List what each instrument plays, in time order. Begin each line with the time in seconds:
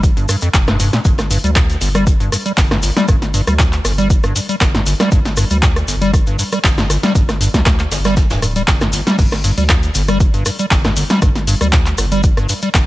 Already playing: sub bass G1
0.03 kick, closed hi-hat, maracas
0.17 sub bass G1, acid bass G2, closed hi-hat, maracas
0.29 acid bass G2, cross-stick, closed hi-hat, open hi-hat, maracas
0.41 acid bass F2, closed hi-hat, maracas
0.54 sub bass F1, kick, snare, clap, closed hi-hat, maracas
0.67 acid bass G2, cross-stick, snare, maracas
0.80 acid bass G2, closed hi-hat, open hi-hat, maracas
0.93 acid bass A#2, snare, closed hi-hat, maracas
1.05 sub bass G1, acid bass G2, kick, closed hi-hat, maracas
1.18 cross-stick, snare, closed hi-hat, maracas
1.31 acid bass G2, closed hi-hat, open hi-hat, maracas
1.44 sub bass D2, acid bass G3, closed hi-hat, maracas
1.55 acid bass A2, kick, cross-stick, snare, clap, closed hi-hat, maracas
1.70 closed hi-hat, maracas
1.81 sub bass G1, acid bass G1, closed hi-hat, open hi-hat, maracas
1.95 acid bass G3, cross-stick, closed hi-hat, maracas
2.07 kick, closed hi-hat, maracas
2.20 sub bass G1, acid bass G2, closed hi-hat, maracas
2.32 acid bass G2, cross-stick, closed hi-hat, open hi-hat, maracas
2.46 acid bass G3, closed hi-hat, maracas
2.57 sub bass G1, kick, snare, clap, closed hi-hat, open hi-hat, maracas
2.71 acid bass G2, cross-stick, snare, maracas
2.82 acid bass G1, closed hi-hat, open hi-hat, maracas
2.97 acid bass G3, snare, closed hi-hat, maracas
3.08 sub bass G1, acid bass G2, kick, cross-stick, closed hi-hat, maracas
3.22 snare, closed hi-hat, maracas
3.34 acid bass G2, closed hi-hat, open hi-hat, maracas
3.47 sub bass D2, acid bass G3, cross-stick, closed hi-hat, maracas
3.59 acid bass A2, kick, snare, clap, closed hi-hat, maracas
3.73 clap, closed hi-hat, maracas
3.84 sub bass G1, acid bass G1, cross-stick, closed hi-hat, open hi-hat, maracas
3.98 acid bass G3, closed hi-hat, maracas
4.10 kick, closed hi-hat, maracas
4.24 sub bass G1, acid bass G2, cross-stick, closed hi-hat, maracas
4.35 acid bass G2, closed hi-hat, open hi-hat, maracas
4.49 acid bass G3, closed hi-hat, maracas
4.60 sub bass G1, kick, cross-stick, snare, clap, closed hi-hat, maracas
4.75 acid bass G2, snare, maracas
4.86 acid bass G1, closed hi-hat, open hi-hat, maracas
5.00 acid bass G3, cross-stick, snare, closed hi-hat, maracas
5.12 sub bass G1, acid bass G2, kick, closed hi-hat, maracas
5.25 snare, closed hi-hat, maracas
5.37 acid bass G2, cross-stick, closed hi-hat, open hi-hat, maracas
5.50 sub bass D2, acid bass G3, closed hi-hat, maracas
5.63 acid bass A2, kick, snare, clap, closed hi-hat, maracas
5.76 cross-stick, closed hi-hat, maracas
5.88 acid bass G1, sub bass G1, closed hi-hat, open hi-hat, maracas
6.01 acid bass G3, closed hi-hat, maracas
6.14 kick, cross-stick, closed hi-hat, maracas
6.27 sub bass G1, acid bass G2, closed hi-hat, maracas
6.38 acid bass G2, closed hi-hat, open hi-hat, maracas
6.52 acid bass G3, cross-stick, closed hi-hat, maracas
6.64 sub bass G1, kick, snare, clap, closed hi-hat, open hi-hat, maracas
6.78 acid bass G2, snare, maracas
6.90 acid bass G1, cross-stick, closed hi-hat, open hi-hat, maracas
7.03 acid bass G3, snare, closed hi-hat, maracas
7.15 sub bass G1, acid bass G2, kick, closed hi-hat, maracas
7.29 cross-stick, snare, closed hi-hat, maracas
7.41 acid bass G2, closed hi-hat, open hi-hat, maracas
7.54 sub bass D2, acid bass G3, kick, snare, closed hi-hat, maracas
7.66 acid bass A2, kick, cross-stick, snare, clap, closed hi-hat, maracas
7.79 clap, closed hi-hat, maracas
7.91 acid bass G1, sub bass G1, snare, closed hi-hat, open hi-hat, maracas
8.04 acid bass G3, cross-stick, snare, closed hi-hat, maracas
8.17 kick, snare, closed hi-hat, maracas
8.30 sub bass D1, acid bass G2, snare, closed hi-hat, maracas
8.42 acid bass G2, cross-stick, closed hi-hat, open hi-hat, maracas
8.56 acid bass G3, closed hi-hat, maracas
8.68 sub bass G1, kick, snare, clap, closed hi-hat, open hi-hat, maracas
8.81 acid bass G2, cross-stick, snare, closed hi-hat, maracas
8.93 acid bass G1, closed hi-hat, open hi-hat, maracas
9.07 acid bass G3, snare, closed hi-hat, maracas
9.19 sub bass G1, acid bass G2, kick, closed hi-hat, crash, maracas
9.32 cross-stick, snare, closed hi-hat, maracas
9.44 acid bass G2, closed hi-hat, open hi-hat, maracas
9.57 sub bass D2, acid bass G3, closed hi-hat, maracas
9.69 acid bass A2, kick, cross-stick, snare, clap, closed hi-hat, maracas
9.83 closed hi-hat, maracas
9.94 sub bass G1, acid bass G1, closed hi-hat, open hi-hat, maracas
10.08 acid bass G3, cross-stick, closed hi-hat, maracas
10.20 kick, closed hi-hat, maracas
10.34 sub bass G1, acid bass G2, closed hi-hat, maracas
10.46 acid bass G2, cross-stick, closed hi-hat, open hi-hat, maracas
10.59 acid bass G3, closed hi-hat, maracas
10.71 sub bass G1, kick, snare, clap, closed hi-hat, open hi-hat, maracas
10.84 acid bass G2, cross-stick, snare, maracas
10.96 acid bass G1, closed hi-hat, open hi-hat, maracas
11.10 acid bass G3, snare, closed hi-hat, maracas
11.22 sub bass G1, acid bass G2, kick, cross-stick, closed hi-hat, maracas
11.36 snare, closed hi-hat, maracas
11.47 acid bass G2, closed hi-hat, open hi-hat, maracas
11.61 sub bass D2, acid bass G3, cross-stick, closed hi-hat, maracas
11.73 acid bass A2, kick, snare, clap, closed hi-hat, maracas
11.86 clap, closed hi-hat, maracas
11.98 acid bass G1, sub bass G1, cross-stick, closed hi-hat, open hi-hat, maracas
12.12 acid bass G3, closed hi-hat, maracas
12.23 kick, closed hi-hat, maracas
12.37 sub bass G1, acid bass G2, cross-stick, closed hi-hat, maracas
12.49 acid bass G2, closed hi-hat, open hi-hat, maracas
12.62 acid bass G3, closed hi-hat, maracas
12.74 sub bass G1, kick, cross-stick, snare, clap, closed hi-hat, maracas